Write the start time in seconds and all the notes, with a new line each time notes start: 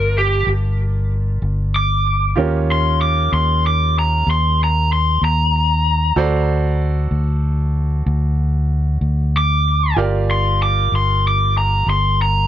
Already playing: G1 F4 A#4 D5 A5
0.18 G4
0.47 G1
1.42 G1
1.76 D6
2.36 D#2 C#4 F4 G4 A#4
2.72 C6
3.02 D6
3.32 D#2 C6
3.67 D6
3.99 A#5
4.27 D#2 C6
4.64 A#5
4.93 C6
5.22 D#2 A#5
6.16 D2 F#4 A4 C5 D5
7.11 D2
8.06 D2
9.01 D2
9.37 D6
9.96 G1 F4 G4 A#4 D5
10.31 C6
10.63 D6
10.92 G1 C6
11.28 D6
11.58 A#5
11.86 G1 C6
12.22 A#5